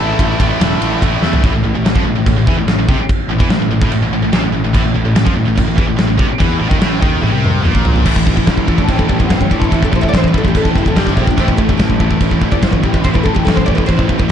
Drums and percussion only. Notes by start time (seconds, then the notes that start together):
0.19 kick, ride
0.40 kick, ride
0.61 snare, ride
0.82 ride
1.02 kick, ride
1.22 snare
1.33 floor tom
1.44 kick, china
1.86 snare, china
1.96 kick
2.26 kick, china
2.47 kick
2.68 snare, china
2.89 kick
3.09 kick, china
3.40 kick
3.50 snare, china
3.82 kick
3.92 china
4.33 snare, china
4.75 kick, china
5.16 snare, china
5.27 kick
5.58 kick, china
5.78 kick
5.98 snare, china
6.19 kick
6.40 kick, china
6.71 kick
6.81 snare, china
7.02 kick
7.23 high tom
7.44 mid tom
7.65 mid tom
7.75 kick
7.85 floor tom
7.96 floor tom
8.06 kick, crash, china
8.16 kick
8.27 kick
8.37 kick
8.47 kick, snare, china
8.58 kick
8.68 kick
8.78 kick
8.88 kick, china
8.99 kick
9.09 kick
9.20 kick
9.30 kick, snare, china
9.41 kick
9.51 kick
9.62 kick
9.72 kick, china
9.83 kick
9.93 kick
10.03 kick
10.14 kick, snare, china
10.24 kick
10.34 kick
10.45 kick
10.55 kick, china
10.65 kick
10.75 kick
10.86 kick
10.96 kick, snare, china
11.07 kick
11.17 kick
11.27 kick
11.38 kick, china
11.48 kick
11.58 kick
11.69 kick
11.79 kick, snare, china
11.90 kick
12.00 kick
12.11 kick
12.20 kick, china
12.31 kick
12.42 kick
12.52 kick
12.63 kick, snare, china
12.73 kick
12.84 kick
12.94 kick
13.04 kick, china
13.15 kick
13.26 kick
13.36 kick
13.47 kick, snare, china
13.57 kick
13.68 kick
13.78 kick
13.89 kick, china
13.99 kick
14.09 kick
14.20 kick